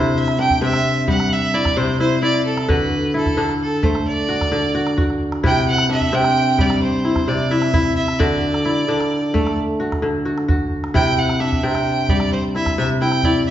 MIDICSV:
0, 0, Header, 1, 4, 480
1, 0, Start_track
1, 0, Tempo, 458716
1, 2811, Time_signature, 12, 3, 24, 8
1, 14131, End_track
2, 0, Start_track
2, 0, Title_t, "Fiddle"
2, 0, Program_c, 0, 110
2, 0, Note_on_c, 0, 72, 86
2, 184, Note_on_c, 0, 76, 94
2, 199, Note_off_c, 0, 72, 0
2, 414, Note_off_c, 0, 76, 0
2, 420, Note_on_c, 0, 79, 88
2, 639, Note_off_c, 0, 79, 0
2, 656, Note_on_c, 0, 76, 95
2, 1100, Note_off_c, 0, 76, 0
2, 1143, Note_on_c, 0, 78, 86
2, 1388, Note_on_c, 0, 76, 93
2, 1403, Note_off_c, 0, 78, 0
2, 1620, Note_on_c, 0, 74, 89
2, 1636, Note_off_c, 0, 76, 0
2, 1851, Note_on_c, 0, 72, 79
2, 1867, Note_off_c, 0, 74, 0
2, 2083, Note_off_c, 0, 72, 0
2, 2089, Note_on_c, 0, 72, 84
2, 2313, Note_off_c, 0, 72, 0
2, 2331, Note_on_c, 0, 74, 86
2, 2554, Note_off_c, 0, 74, 0
2, 2572, Note_on_c, 0, 69, 81
2, 2817, Note_on_c, 0, 71, 82
2, 2833, Note_off_c, 0, 69, 0
2, 3294, Note_off_c, 0, 71, 0
2, 3307, Note_on_c, 0, 69, 81
2, 3746, Note_off_c, 0, 69, 0
2, 3787, Note_on_c, 0, 69, 76
2, 4020, Note_on_c, 0, 72, 77
2, 4036, Note_off_c, 0, 69, 0
2, 4256, Note_off_c, 0, 72, 0
2, 4261, Note_on_c, 0, 74, 79
2, 5174, Note_off_c, 0, 74, 0
2, 5714, Note_on_c, 0, 79, 103
2, 5927, Note_off_c, 0, 79, 0
2, 5947, Note_on_c, 0, 78, 99
2, 6163, Note_off_c, 0, 78, 0
2, 6189, Note_on_c, 0, 76, 89
2, 6431, Note_on_c, 0, 79, 106
2, 6447, Note_off_c, 0, 76, 0
2, 6915, Note_on_c, 0, 74, 90
2, 6931, Note_off_c, 0, 79, 0
2, 7135, Note_off_c, 0, 74, 0
2, 7141, Note_on_c, 0, 72, 87
2, 7620, Note_on_c, 0, 74, 79
2, 7636, Note_off_c, 0, 72, 0
2, 7861, Note_on_c, 0, 76, 87
2, 7877, Note_off_c, 0, 74, 0
2, 8323, Note_off_c, 0, 76, 0
2, 8329, Note_on_c, 0, 76, 82
2, 8573, Note_on_c, 0, 74, 75
2, 8588, Note_off_c, 0, 76, 0
2, 10013, Note_off_c, 0, 74, 0
2, 11458, Note_on_c, 0, 79, 100
2, 11701, Note_on_c, 0, 78, 90
2, 11717, Note_off_c, 0, 79, 0
2, 11933, Note_on_c, 0, 76, 84
2, 11948, Note_off_c, 0, 78, 0
2, 12173, Note_on_c, 0, 79, 86
2, 12189, Note_off_c, 0, 76, 0
2, 12656, Note_on_c, 0, 74, 81
2, 12671, Note_off_c, 0, 79, 0
2, 12890, Note_off_c, 0, 74, 0
2, 12896, Note_on_c, 0, 72, 82
2, 13003, Note_off_c, 0, 72, 0
2, 13140, Note_on_c, 0, 76, 85
2, 13360, Note_off_c, 0, 76, 0
2, 13381, Note_on_c, 0, 76, 85
2, 13487, Note_off_c, 0, 76, 0
2, 13613, Note_on_c, 0, 79, 83
2, 13858, Note_on_c, 0, 74, 81
2, 13874, Note_off_c, 0, 79, 0
2, 14091, Note_off_c, 0, 74, 0
2, 14097, Note_on_c, 0, 76, 86
2, 14131, Note_off_c, 0, 76, 0
2, 14131, End_track
3, 0, Start_track
3, 0, Title_t, "Kora"
3, 0, Program_c, 1, 46
3, 0, Note_on_c, 1, 48, 80
3, 0, Note_on_c, 1, 57, 67
3, 0, Note_on_c, 1, 62, 69
3, 0, Note_on_c, 1, 64, 70
3, 0, Note_on_c, 1, 69, 64
3, 404, Note_off_c, 1, 62, 0
3, 408, Note_on_c, 1, 62, 57
3, 587, Note_off_c, 1, 69, 0
3, 632, Note_off_c, 1, 48, 0
3, 643, Note_on_c, 1, 48, 77
3, 648, Note_on_c, 1, 60, 63
3, 1057, Note_off_c, 1, 57, 0
3, 1127, Note_on_c, 1, 55, 72
3, 1572, Note_off_c, 1, 64, 0
3, 1610, Note_on_c, 1, 64, 59
3, 1837, Note_off_c, 1, 48, 0
3, 1850, Note_on_c, 1, 48, 72
3, 2089, Note_off_c, 1, 64, 0
3, 2093, Note_on_c, 1, 64, 63
3, 2165, Note_off_c, 1, 62, 0
3, 2323, Note_off_c, 1, 64, 0
3, 2327, Note_on_c, 1, 64, 69
3, 2532, Note_off_c, 1, 60, 0
3, 2809, Note_on_c, 1, 50, 79
3, 2811, Note_on_c, 1, 66, 73
3, 2863, Note_off_c, 1, 48, 0
3, 2863, Note_off_c, 1, 55, 0
3, 3282, Note_off_c, 1, 64, 0
3, 3286, Note_on_c, 1, 64, 60
3, 3516, Note_off_c, 1, 50, 0
3, 3528, Note_on_c, 1, 50, 70
3, 3531, Note_on_c, 1, 62, 64
3, 4007, Note_on_c, 1, 57, 71
3, 4341, Note_off_c, 1, 66, 0
3, 4486, Note_on_c, 1, 66, 60
3, 4713, Note_off_c, 1, 50, 0
3, 4726, Note_on_c, 1, 50, 72
3, 4926, Note_off_c, 1, 64, 0
3, 4963, Note_off_c, 1, 66, 0
3, 4967, Note_on_c, 1, 66, 69
3, 5202, Note_off_c, 1, 66, 0
3, 5206, Note_on_c, 1, 66, 77
3, 5288, Note_off_c, 1, 62, 0
3, 5686, Note_on_c, 1, 64, 77
3, 5688, Note_on_c, 1, 48, 86
3, 5744, Note_off_c, 1, 50, 0
3, 6097, Note_off_c, 1, 57, 0
3, 6167, Note_on_c, 1, 62, 62
3, 6396, Note_off_c, 1, 48, 0
3, 6408, Note_on_c, 1, 48, 77
3, 6412, Note_on_c, 1, 60, 61
3, 6736, Note_off_c, 1, 66, 0
3, 6891, Note_on_c, 1, 55, 76
3, 7326, Note_off_c, 1, 64, 0
3, 7372, Note_on_c, 1, 64, 59
3, 7601, Note_off_c, 1, 48, 0
3, 7613, Note_on_c, 1, 48, 73
3, 7855, Note_off_c, 1, 64, 0
3, 7859, Note_on_c, 1, 64, 68
3, 7924, Note_off_c, 1, 62, 0
3, 8092, Note_off_c, 1, 64, 0
3, 8096, Note_on_c, 1, 64, 80
3, 8295, Note_off_c, 1, 60, 0
3, 8576, Note_on_c, 1, 50, 85
3, 8580, Note_on_c, 1, 66, 68
3, 8625, Note_off_c, 1, 48, 0
3, 8625, Note_off_c, 1, 55, 0
3, 9050, Note_off_c, 1, 64, 0
3, 9054, Note_on_c, 1, 64, 62
3, 9283, Note_off_c, 1, 50, 0
3, 9295, Note_on_c, 1, 50, 77
3, 9297, Note_on_c, 1, 62, 62
3, 9773, Note_on_c, 1, 57, 76
3, 10110, Note_off_c, 1, 66, 0
3, 10253, Note_on_c, 1, 66, 60
3, 10475, Note_off_c, 1, 50, 0
3, 10488, Note_on_c, 1, 50, 69
3, 10694, Note_off_c, 1, 64, 0
3, 10725, Note_off_c, 1, 66, 0
3, 10729, Note_on_c, 1, 66, 61
3, 10967, Note_off_c, 1, 66, 0
3, 10971, Note_on_c, 1, 66, 64
3, 11054, Note_off_c, 1, 62, 0
3, 11449, Note_on_c, 1, 48, 82
3, 11450, Note_on_c, 1, 64, 68
3, 11506, Note_off_c, 1, 50, 0
3, 11863, Note_off_c, 1, 57, 0
3, 11928, Note_on_c, 1, 62, 62
3, 12162, Note_off_c, 1, 48, 0
3, 12173, Note_on_c, 1, 48, 71
3, 12175, Note_on_c, 1, 60, 57
3, 12501, Note_off_c, 1, 66, 0
3, 12656, Note_on_c, 1, 55, 70
3, 13090, Note_off_c, 1, 64, 0
3, 13138, Note_on_c, 1, 64, 61
3, 13362, Note_off_c, 1, 48, 0
3, 13375, Note_on_c, 1, 48, 74
3, 13614, Note_off_c, 1, 64, 0
3, 13618, Note_on_c, 1, 64, 61
3, 13686, Note_off_c, 1, 62, 0
3, 13855, Note_off_c, 1, 64, 0
3, 13860, Note_on_c, 1, 64, 77
3, 14058, Note_off_c, 1, 60, 0
3, 14131, Note_off_c, 1, 48, 0
3, 14131, Note_off_c, 1, 55, 0
3, 14131, Note_off_c, 1, 64, 0
3, 14131, End_track
4, 0, Start_track
4, 0, Title_t, "Calabash"
4, 291, Note_on_c, 9, 38, 46
4, 396, Note_off_c, 9, 38, 0
4, 526, Note_on_c, 9, 36, 50
4, 526, Note_on_c, 9, 38, 20
4, 631, Note_off_c, 9, 36, 0
4, 631, Note_off_c, 9, 38, 0
4, 767, Note_on_c, 9, 38, 45
4, 872, Note_off_c, 9, 38, 0
4, 1127, Note_on_c, 9, 36, 53
4, 1231, Note_off_c, 9, 36, 0
4, 1254, Note_on_c, 9, 38, 46
4, 1359, Note_off_c, 9, 38, 0
4, 1612, Note_on_c, 9, 38, 20
4, 1717, Note_off_c, 9, 38, 0
4, 1729, Note_on_c, 9, 36, 52
4, 1729, Note_on_c, 9, 38, 49
4, 1834, Note_off_c, 9, 36, 0
4, 1834, Note_off_c, 9, 38, 0
4, 2452, Note_on_c, 9, 38, 21
4, 2556, Note_off_c, 9, 38, 0
4, 2694, Note_on_c, 9, 38, 50
4, 2799, Note_off_c, 9, 38, 0
4, 2818, Note_on_c, 9, 36, 57
4, 2923, Note_off_c, 9, 36, 0
4, 3411, Note_on_c, 9, 36, 49
4, 3411, Note_on_c, 9, 38, 19
4, 3516, Note_off_c, 9, 36, 0
4, 3516, Note_off_c, 9, 38, 0
4, 3652, Note_on_c, 9, 38, 42
4, 3757, Note_off_c, 9, 38, 0
4, 4010, Note_on_c, 9, 36, 56
4, 4115, Note_off_c, 9, 36, 0
4, 4133, Note_on_c, 9, 38, 47
4, 4238, Note_off_c, 9, 38, 0
4, 4498, Note_on_c, 9, 38, 22
4, 4603, Note_off_c, 9, 38, 0
4, 4618, Note_on_c, 9, 36, 50
4, 4618, Note_on_c, 9, 38, 48
4, 4723, Note_off_c, 9, 36, 0
4, 4723, Note_off_c, 9, 38, 0
4, 5092, Note_on_c, 9, 38, 44
4, 5197, Note_off_c, 9, 38, 0
4, 5211, Note_on_c, 9, 36, 63
4, 5316, Note_off_c, 9, 36, 0
4, 5336, Note_on_c, 9, 38, 18
4, 5441, Note_off_c, 9, 38, 0
4, 5570, Note_on_c, 9, 38, 49
4, 5675, Note_off_c, 9, 38, 0
4, 5689, Note_on_c, 9, 36, 57
4, 5794, Note_off_c, 9, 36, 0
4, 6051, Note_on_c, 9, 38, 51
4, 6156, Note_off_c, 9, 38, 0
4, 6290, Note_on_c, 9, 36, 47
4, 6290, Note_on_c, 9, 38, 19
4, 6394, Note_off_c, 9, 36, 0
4, 6394, Note_off_c, 9, 38, 0
4, 6533, Note_on_c, 9, 38, 47
4, 6637, Note_off_c, 9, 38, 0
4, 6892, Note_on_c, 9, 36, 55
4, 6997, Note_off_c, 9, 36, 0
4, 7011, Note_on_c, 9, 38, 49
4, 7116, Note_off_c, 9, 38, 0
4, 7372, Note_on_c, 9, 38, 21
4, 7477, Note_off_c, 9, 38, 0
4, 7490, Note_on_c, 9, 36, 46
4, 7490, Note_on_c, 9, 38, 49
4, 7595, Note_off_c, 9, 36, 0
4, 7595, Note_off_c, 9, 38, 0
4, 7971, Note_on_c, 9, 38, 48
4, 8076, Note_off_c, 9, 38, 0
4, 8096, Note_on_c, 9, 36, 63
4, 8201, Note_off_c, 9, 36, 0
4, 8214, Note_on_c, 9, 38, 20
4, 8319, Note_off_c, 9, 38, 0
4, 8457, Note_on_c, 9, 38, 46
4, 8561, Note_off_c, 9, 38, 0
4, 8581, Note_on_c, 9, 36, 52
4, 8685, Note_off_c, 9, 36, 0
4, 8702, Note_on_c, 9, 38, 19
4, 8807, Note_off_c, 9, 38, 0
4, 8939, Note_on_c, 9, 38, 50
4, 9044, Note_off_c, 9, 38, 0
4, 9062, Note_on_c, 9, 38, 17
4, 9167, Note_off_c, 9, 38, 0
4, 9423, Note_on_c, 9, 38, 49
4, 9527, Note_off_c, 9, 38, 0
4, 9781, Note_on_c, 9, 36, 60
4, 9886, Note_off_c, 9, 36, 0
4, 9906, Note_on_c, 9, 38, 49
4, 10011, Note_off_c, 9, 38, 0
4, 10384, Note_on_c, 9, 36, 46
4, 10384, Note_on_c, 9, 38, 45
4, 10488, Note_off_c, 9, 36, 0
4, 10488, Note_off_c, 9, 38, 0
4, 10502, Note_on_c, 9, 38, 21
4, 10607, Note_off_c, 9, 38, 0
4, 10738, Note_on_c, 9, 38, 20
4, 10842, Note_off_c, 9, 38, 0
4, 10858, Note_on_c, 9, 38, 44
4, 10962, Note_off_c, 9, 38, 0
4, 10978, Note_on_c, 9, 36, 61
4, 11083, Note_off_c, 9, 36, 0
4, 11341, Note_on_c, 9, 38, 46
4, 11446, Note_off_c, 9, 38, 0
4, 11462, Note_on_c, 9, 36, 58
4, 11566, Note_off_c, 9, 36, 0
4, 11818, Note_on_c, 9, 38, 51
4, 11923, Note_off_c, 9, 38, 0
4, 12059, Note_on_c, 9, 36, 47
4, 12059, Note_on_c, 9, 38, 19
4, 12163, Note_off_c, 9, 36, 0
4, 12163, Note_off_c, 9, 38, 0
4, 12294, Note_on_c, 9, 38, 48
4, 12399, Note_off_c, 9, 38, 0
4, 12647, Note_on_c, 9, 36, 61
4, 12752, Note_off_c, 9, 36, 0
4, 12765, Note_on_c, 9, 38, 45
4, 12869, Note_off_c, 9, 38, 0
4, 13129, Note_on_c, 9, 38, 21
4, 13233, Note_off_c, 9, 38, 0
4, 13249, Note_on_c, 9, 36, 48
4, 13249, Note_on_c, 9, 38, 44
4, 13354, Note_off_c, 9, 36, 0
4, 13354, Note_off_c, 9, 38, 0
4, 13726, Note_on_c, 9, 38, 42
4, 13831, Note_off_c, 9, 38, 0
4, 13845, Note_on_c, 9, 36, 58
4, 13950, Note_off_c, 9, 36, 0
4, 13969, Note_on_c, 9, 38, 21
4, 14074, Note_off_c, 9, 38, 0
4, 14131, End_track
0, 0, End_of_file